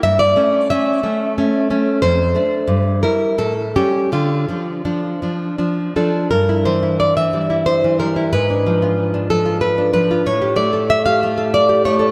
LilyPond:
\new Staff \with { instrumentName = "Nylon-string guitar" } { \time 3/4 \key d \minor \tempo 4 = 90 << { e''16 d''8. e''4 r4 | c''4. bes'8 a'8 g'8 | f'2~ f'8 a'8 | bes'8 c''8 d''16 e''8. c''8 bes'8 |
b'4. a'8 b'8 b'8 | cis''8 d''8 e''16 f''8. d''8 cis''8 | } \\ { g,8 <a cis'>8 <a cis'>8 <a cis'>8 <a cis'>8 <a cis'>8 | f,8 <a d'>8 g,8 <g e'>8 a,8 <g cis'>8 | d8 <f d'>8 <f d'>8 <f d'>8 <f d'>8 <f d'>8 | g,16 e'16 e16 e'8 e16 g16 e'8 e16 g16 e'16 |
gis,16 d'16 eis16 eis'8 d'16 eis16 eis'8 d'16 eis16 eis'16 | a,16 g'16 a16 a'8 g'16 a16 a'8 g'16 a16 a'16 | } >> }